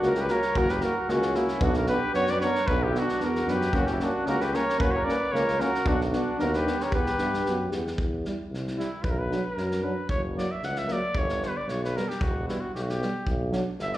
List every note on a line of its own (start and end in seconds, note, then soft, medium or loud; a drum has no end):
0.01 0.31 C#2 loud
0.01 0.12 A#3 medium
0.01 0.12 F#4 medium
0.01 0.18 F#4 medium
0.01 snare soft
0.07 0.23 A#4 loud
0.15 0.28 G4 medium
0.15 snare soft
0.21 0.32 B4 medium
0.28 0.40 A#3 medium
0.28 0.39 F#4 medium
0.28 0.59 A#4 medium
0.28 snare soft
0.33 0.59 C#5 medium
0.42 snare soft
0.54 0.85 F#1 medium
0.54 0.67 A#3 medium
0.54 0.65 F#4 medium
0.54 0.71 F#4 medium
0.54 0.72 A#4 loud
0.54 kick medium
0.68 0.85 G4 medium
0.68 0.85 B4 medium
0.68 snare soft
0.80 0.93 A#3 medium
0.80 0.91 F#4 medium
0.80 1.13 F#4 medium
0.80 1.12 A#4 medium
0.80 snare soft
1.07 1.38 C#2 loud
1.07 1.19 A#3 medium
1.07 1.18 F#4 medium
1.07 1.37 F#4 loud
1.07 snare soft
1.12 1.36 C#4 medium
1.22 snare soft
1.34 1.46 A#3 medium
1.34 1.66 C#4 medium
1.34 1.65 E4 medium
1.34 1.45 F#4 medium
1.34 snare soft
1.48 snare soft
1.60 1.91 B1 loud
1.60 1.71 B3 medium
1.60 1.73 D4 medium
1.60 1.76 F#4 loud
1.60 kick loud
1.64 1.77 D4 medium
1.74 1.88 A#4 medium
1.74 snare soft
1.80 1.90 F#4 medium
1.87 1.99 B3 medium
1.87 2.00 D4 medium
1.87 2.13 B4 loud
1.87 snare soft
1.91 2.15 G4 medium
2.14 2.44 F#2 medium
2.14 2.25 B3 medium
2.14 2.26 D4 medium
2.14 2.32 C#5 loud
2.14 snare soft
2.20 2.35 F#4 medium
2.27 2.41 D5 loud
2.27 snare soft
2.33 2.44 B4 medium
2.41 2.52 B3 medium
2.41 2.51 D4 medium
2.41 2.75 A#4 medium
2.41 2.69 C#5 loud
2.41 snare soft
2.55 snare soft
2.66 2.96 B1 medium
2.66 2.79 B3 medium
2.66 2.79 D4 medium
2.66 2.85 B4 loud
2.66 kick medium
2.74 2.89 F#4 medium
2.83 2.99 G4 medium
2.88 3.03 E4 medium
2.94 3.05 B3 medium
2.94 3.05 D4 medium
2.94 snare soft
2.98 3.25 D4 medium
2.98 3.22 F#4 loud
3.09 snare soft
3.19 3.44 E2 medium
3.19 3.31 B3 medium
3.19 3.31 D4 medium
3.19 3.51 A#4 medium
3.19 snare soft
3.27 3.55 F#4 medium
3.35 snare soft
3.46 3.71 F#2 medium
3.46 3.57 B3 soft
3.46 3.57 D4 medium
3.46 3.76 B4 loud
3.46 snare soft
3.54 3.82 G4 medium
3.61 snare soft
3.72 4.03 F#1 medium
3.72 3.83 A#3 medium
3.72 3.84 C#4 medium
3.72 3.89 F#4 loud
3.72 kick medium
3.80 3.95 C#4 medium
3.87 4.03 G4 medium
3.87 snare soft
3.93 4.05 E4 medium
3.99 4.11 A#3 medium
3.99 4.10 C#4 medium
3.99 4.28 F#4 medium
3.99 snare soft
4.03 4.31 D4 medium
4.24 4.55 C#2 medium
4.24 4.38 A#3 medium
4.24 4.36 C#4 medium
4.24 4.43 A#4 loud
4.24 snare soft
4.29 4.44 F#4 medium
4.41 4.57 G4 medium
4.41 4.56 B4 medium
4.41 snare soft
4.52 4.63 A#3 medium
4.52 4.63 C#4 medium
4.52 4.81 A#4 medium
4.52 4.79 C#5 loud
4.52 snare soft
4.69 snare soft
4.78 5.09 F#1 medium
4.78 4.90 A#3 medium
4.78 4.89 C#4 medium
4.78 4.93 B4 loud
4.78 kick medium
4.83 4.98 F#4 medium
4.92 5.06 C#5 medium
4.96 5.13 A#4 medium
5.04 5.16 A#3 medium
5.04 5.16 C#4 medium
5.04 5.34 D5 loud
5.09 5.36 B4 medium
5.09 snare soft
5.32 5.62 C#2 medium
5.32 5.43 A#3 medium
5.32 5.43 C#4 medium
5.32 5.63 A#4 medium
5.32 5.62 C#5 loud
5.32 snare soft
5.48 snare soft
5.58 5.69 A#3 medium
5.58 5.69 C#4 medium
5.58 5.90 F#4 medium
5.58 5.89 A#4 medium
5.58 snare soft
5.75 snare soft
5.85 6.15 B1 medium
5.85 5.97 B3 medium
5.85 5.96 D4 medium
5.85 6.01 D4 medium
5.85 6.01 F#4 loud
5.85 kick medium
6.01 snare soft
6.12 6.23 B3 medium
6.12 6.23 D4 medium
6.12 6.38 F#4 medium
6.12 snare soft
6.16 6.39 D4 medium
6.37 6.68 D#2 loud
6.37 6.50 B3 medium
6.37 6.48 D4 medium
6.37 6.56 A#4 medium
6.37 snare soft
6.44 6.58 F#4 medium
6.53 6.85 G4 medium
6.53 6.83 B4 medium
6.53 snare soft
6.64 6.76 B3 medium
6.64 6.74 D4 medium
6.64 snare soft
6.80 6.94 A#4 medium
6.80 6.93 C#5 medium
6.80 snare soft
6.90 7.07 E2 medium
6.90 7.01 G4 medium
6.90 kick medium
6.94 7.04 B3 medium
6.94 7.69 G4 medium
6.94 7.69 B4 loud
7.06 snare soft
7.16 7.43 G2 medium
7.16 7.29 B3 medium
7.16 7.27 G4 medium
7.16 snare soft
7.34 snare soft
7.43 7.70 F#2 medium
7.43 7.54 G4 medium
7.43 snare soft
7.48 7.58 B3 medium
7.71 7.96 E2 medium
7.71 7.83 B3 soft
7.71 7.81 G4 medium
7.71 snare soft
7.87 snare soft
7.97 8.27 E2 medium
7.97 kick medium
8.25 8.36 G3 medium
8.25 8.35 E4 soft
8.25 snare soft
8.51 8.80 C2 medium
8.51 snare soft
8.67 snare soft
8.76 8.88 G3 medium
8.76 8.87 E4 medium
8.76 9.05 E4 medium
8.80 snare soft
9.03 9.33 B1 medium
9.03 9.12 B4 medium
9.03 kick medium
9.11 9.20 A#4 medium
9.19 9.46 B4 medium
9.29 9.41 F#3 medium
9.29 9.40 D4 medium
9.29 snare soft
9.45 9.85 A#4 medium
9.57 9.86 F#2 medium
9.57 snare soft
9.71 snare soft
9.81 9.93 F#3 medium
9.81 9.92 D4 medium
9.81 10.09 B4 medium
10.09 10.40 F#1 medium
10.09 10.22 C#5 medium
10.09 kick medium
10.34 10.47 F#3 medium
10.34 10.45 A#3 medium
10.34 10.53 D5 medium
10.38 snare soft
10.52 10.66 E5 medium
10.63 10.92 C#2 medium
10.63 10.80 F#5 loud
10.63 snare soft
10.76 10.94 E5 medium
10.76 snare soft
10.87 11.00 F#3 medium
10.87 10.98 A#3 medium
10.87 snare soft
10.93 11.20 D5 loud
11.15 11.45 G1 loud
11.15 11.46 C#5 loud
11.15 kick medium
11.29 snare soft
11.42 11.53 G3 soft
11.42 11.52 B3 medium
11.42 11.58 B4 medium
11.42 snare soft
11.57 11.71 D5 medium
11.67 11.97 B1 medium
11.67 11.82 C#5 medium
11.67 snare soft
11.84 11.98 B4 medium
11.84 snare soft
11.95 12.06 G3 medium
11.95 12.06 B3 medium
11.95 12.10 A#4 medium
11.95 snare soft
12.09 12.24 G4 medium
12.09 snare soft
12.21 12.50 E1 medium
12.21 12.48 F#4 medium
12.21 kick medium
12.48 12.59 G3 medium
12.48 12.58 B3 medium
12.48 12.62 E4 medium
12.48 snare soft
12.61 12.74 F#4 medium
12.74 13.03 B1 medium
12.74 12.84 G4 medium
12.74 snare soft
12.83 12.92 F#4 medium
12.89 13.28 G4 medium
12.89 snare soft
12.99 13.12 G3 soft
12.99 13.10 B3 medium
12.99 snare soft
13.26 13.56 B1 medium
13.26 kick medium
13.51 13.62 F#3 medium
13.51 13.64 D4 medium
13.51 snare soft
13.79 13.98 G1 medium
13.79 13.97 E5 loud
13.79 snare soft
13.93 snare soft